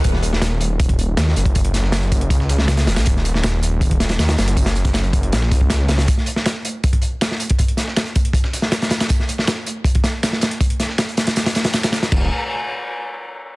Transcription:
<<
  \new Staff \with { instrumentName = "Detuned saw bass" } { \clef bass \time 4/4 \key ees \minor \tempo 4 = 159 ees,,2. ees,8 ges,,8~ | ges,,2 des,4. ees,,16 bes,,16 | ees,,2. ees,8 ges,,8~ | ges,,2 bes,,8 des,4. |
r1 | r1 | r1 | r1 |
ees,,8 r2. r8 | }
  \new DrumStaff \with { instrumentName = "Drums" } \drummode { \time 4/4 <hh bd tamb>16 sn16 <hh tamb>16 sn16 <hh sn tamb>8 <hh tamb>8 <hh bd tamb>16 <hh bd>16 <hh tamb>8 <hh sn tamb>16 sn16 <hh tamb>16 <hh bd>16 | <hh bd tamb>16 hh16 <hh sn tamb>16 sn16 <hh sn tamb>16 hh16 <hh bd tamb>16 hh16 <hh bd tamb>16 sn16 <hh sn tamb>16 sn16 <hh sn tamb>16 <hh sn>16 <hh sn tamb>16 <hh sn tamb>16 | <hh bd tamb>16 sn16 <hh tamb>16 sn16 <hh sn tamb>8 <hh tamb>8 <hh bd tamb>16 <hh bd>16 <hh sn tamb>16 <hh sn>16 <hh sn tamb>16 <hh sn>16 <hh sn tamb>16 hh16 | <hh bd tamb>16 <hh sn>16 <hh tamb>16 <hh bd sn>16 <hh sn tamb>16 hh16 <hh bd tamb>16 hh16 <hh sn tamb>16 sn16 <hh bd sn tamb>16 bd16 <hh sn tamb>8 <hh sn tamb>16 <hh sn>16 |
<hh bd tamb>16 sn16 <hh tamb>16 sn16 <hh sn tamb>8 <hh tamb>8 <hh bd tamb>16 <hh bd>16 <hh tamb>8 <hh sn tamb>16 sn16 <hh tamb>16 <hh bd>16 | <hh bd tamb>16 hh16 <hh sn tamb>16 sn16 <hh sn tamb>16 hh16 <hh bd tamb>16 hh16 <hh bd tamb>16 sn16 <hh sn tamb>16 sn16 <hh sn tamb>16 <hh sn>16 <hh sn tamb>16 <hh sn tamb>16 | <hh bd tamb>16 sn16 <hh tamb>16 sn16 <hh sn tamb>8 <hh tamb>8 <hh bd tamb>16 <hh bd>16 <hh sn tamb>8 <hh sn tamb>16 sn16 <hh sn tamb>16 hh16 | <hh bd tamb>16 hh16 <hh sn tamb>16 sn16 <hh sn tamb>16 hh16 <hh sn tamb>16 <hh sn>16 <hh sn tamb>16 <hh sn>16 <hh sn tamb>16 <hh sn>16 <hh sn tamb>16 <hh sn tamb>16 <hh sn tamb>16 <hh sn>16 |
<cymc bd>4 r4 r4 r4 | }
>>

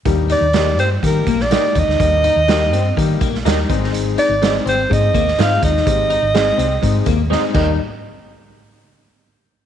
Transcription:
<<
  \new Staff \with { instrumentName = "Alto saxophone" } { \time 4/4 \key ees \major \tempo 4 = 124 r8 d''4 c''8 bes'8. d''8. ees''8~ | ees''2~ ees''8 r4. | r8 d''4 c''8 ees''4 f''8 ees''8~ | ees''2. r4 |
r1 | }
  \new Staff \with { instrumentName = "Clean electric guitar" } { \time 4/4 \key ees \major r4 <g' bes' ees''>16 r4. r16 <g' bes' ees''>16 r8. | r4 <g' bes' ees''>16 r4. r16 <g' bes' ees''>16 r8. | r4 <aes' c'' ees''>16 r4. r16 <aes' c'' ees''>16 r8. | r4 <aes' c'' ees''>16 r4. r16 <aes' c'' ees''>16 r16 <g' bes' ees''>8 |
r1 | }
  \new Staff \with { instrumentName = "Clean electric guitar" } { \time 4/4 \key ees \major r8 ees'8 r8 c'8 r8 bes8 ees'4 | r8 ees'8 r8 c'8 r8 bes8 ees'4 | r8 ees'8 r8 c'8 r8 bes8 ees'4 | r8 ees'8 r8 c'8 r8 bes8 ees'8 ees'8 |
r1 | }
  \new Staff \with { instrumentName = "Upright piano" } { \time 4/4 \key ees \major <g bes ees' g'>8 r8 <g bes ees' g'>8 r8 <g bes ees' g'>8 r8 <g bes ees' g'>8 r8 | <g bes ees' g'>8 r8 <g bes ees' g'>8 r8 <g bes ees' g'>8 r8 <g bes ees' g'>8 <aes c' ees' aes'>8~ | <aes c' ees' aes'>8 r8 <aes c' ees' aes'>8 r8 <aes c' ees' aes'>8 r8 <aes c' ees' f'>8 r8 | <aes c' ees' g'>8 r8 <aes c' ees' aes'>8 r8 <aes c' ees' aes'>8 r8 <aes c' ees' aes'>8 <g bes ees' g'>8 |
r1 | }
  \new Staff \with { instrumentName = "Fingered electric bass" } { \clef bass \time 4/4 \key ees \major ees,8. ees,8. g,8 ees8 bes,,8. r16 ees,16 d,16 | ees,8. ees,8. g,8 ees8 bes,,8 ees,8 aes,,8~ | aes,,8. aes,,8. aes,,8 aes,8 ees,8 aes,8 ees,8 | aes,,8. aes,,8. c,8 aes,8 ees,8. r16 ees,8 |
r1 | }
  \new DrumStaff \with { instrumentName = "Drums" } \drummode { \time 4/4 <hh bd>8 hh8 <hh sn>8 hh8 <hh bd>8 <hh bd>16 sn16 <hh sn>8 <hh bd>16 sn16 | <hh bd>8 hh8 <hh sn>8 hh8 <hh bd>8 <hh bd>16 sn16 <hh sn>8 <hh bd>16 sn16 | hh8 hh8 <hh sn>8 hh8 <hh bd>8 <hh bd>16 sn16 <hh sn>8 <hh bd>16 sn16 | <hh bd>8 hh8 <hh sn>8 hh8 <hh bd>8 <hh bd>8 sn8 <cymc bd>8 |
r4 r4 r4 r4 | }
>>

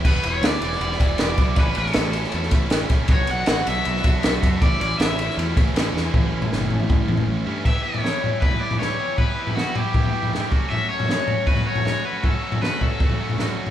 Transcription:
<<
  \new Staff \with { instrumentName = "Overdriven electric guitar" } { \time 4/4 \key e \dorian \tempo 4 = 158 b'8 cis''8 d''8 d''2~ d''8 | b'8 a'2 r4. | cis''8 fis''4 e''2~ e''8 | d''8 d''8 e''4 r2 |
r1 | e''8 cis''4. b'8 d''8 cis''4 | b'4 fis'8 g'2 r8 | e''8 cis''4. b'8 cis''8 cis''8 b'8 |
a'4 b'8 a'2 r8 | }
  \new Staff \with { instrumentName = "Distorted electric guitar" } { \time 4/4 \key e \dorian <e g b e'>8 <e g b e'>8 <e g b e'>8 <e g b e'>8 <e g b e'>8 <e g b e'>8 <e g b e'>8 <e g b e'>8 | <a, e a cis' e'>8 <a, e a cis' e'>8 <a, e a cis' e'>8 <a, e a cis' e'>8 <a, e a cis' e'>8 <a, e a cis' e'>8 <a, e a cis' e'>8 <a, e a cis' e'>8 | <b, fis b d' fis'>8 <b, fis b d' fis'>8 <b, fis b d' fis'>8 <b, fis b d' fis'>8 <b, fis b d' fis'>8 <b, fis b d' fis'>8 <b, fis b d' fis'>8 <b, fis b d' fis'>8 | <a, e a cis' e'>8 <a, e a cis' e'>8 <a, e a cis' e'>8 <a, e a cis' e'>8 <a, e a cis' e'>8 <a, e a cis' e'>8 <a, e a cis' e'>8 <a, e a cis' e'>8 |
<a, e a cis' e'>2.~ <a, e a cis' e'>8 <a, e a cis' e'>8 | <e b e' g'>8 <e b e' g'>8 <e b e' g'>8 <e b e' g'>8 <e b e' g'>8 <e b e' g'>8 <e b e' g'>8 <e b e' g'>8 | <e b e' g'>8 <e b e' g'>8 <e b e' g'>8 <e b e' g'>8 <e b e' g'>8 <e b e' g'>8 <e b e' g'>8 <fis a cis' fis'>8 | <fis a cis' fis'>8 <fis a cis' fis'>8 <fis a cis' fis'>8 <fis a cis' fis'>8 <fis a cis' fis'>8 <fis a cis' fis'>8 <fis a cis' fis'>8 <fis a cis' fis'>8 |
<fis a cis' fis'>8 <fis a cis' fis'>8 <fis a cis' fis'>8 <fis a cis' fis'>8 <fis a cis' fis'>8 <fis a cis' fis'>8 <fis a cis' fis'>8 <fis a cis' fis'>8 | }
  \new Staff \with { instrumentName = "Fingered electric bass" } { \clef bass \time 4/4 \key e \dorian e,,8 e,,8 d,8 e,,8 e,,8 e,,8 e,,8 b,,8 | a,,8 a,,8 a,,4 e,8 a,,8 a,,8 ais,,8 | b,,8 b,,8 a,,8 b,,8 b,,8 b,,8 b,,8 fis,8 | a,,8 a,,8 a,,4 e,8 a,,8 a,,8 e,8 |
a,,8 a,,8 g,,8 a,,8 a,,8 a,,8 a,,8 g,8 | r1 | r1 | r1 |
r1 | }
  \new DrumStaff \with { instrumentName = "Drums" } \drummode { \time 4/4 <cymc bd>8 cymr8 <cymr sn>8 cymr16 sn16 cymr16 sn16 <bd cymr>8 <cymr sn>8 <bd cymr>8 | <bd cymr>8 cymr16 sn16 <cymr sn>8 cymr16 sn16 cymr16 sn16 <bd cymr>8 <cymr sn>8 <bd cymr>8 | <bd cymr>8 cymr8 <cymr sn>8 cymr8 cymr16 sn16 <bd cymr>8 <cymr sn>8 <bd cymr>8 | <bd cymr>8 cymr8 <cymr sn>8 cymr16 sn16 cymr8 <bd cymr>8 <cymr sn>8 sn8 |
<bd tomfh>8. tomfh16 sn16 tomfh16 tomfh16 toml16 <bd tomfh>8 <tomfh toml>16 tomfh16 r4 | <cymc bd tomfh>8. tomfh16 <sn toml>8 tomfh8 <bd tomfh>16 tomfh8 tomfh16 <sn tomfh>4 | <bd tomfh>8. tomfh16 <sn toml>8 tomfh8 <bd tomfh>16 tomfh8 tomfh16 <sn tomfh>8 bd8 | tomfh8. tomfh16 <sn toml>8 tomfh8 <bd tomfh>16 tomfh8 tomfh16 <sn tomfh>4 |
<bd tomfh>8. tomfh16 <sn toml>8 <bd tomfh>8 <bd tomfh>16 tomfh8 tomfh16 <sn tomfh>8. tomfh16 | }
>>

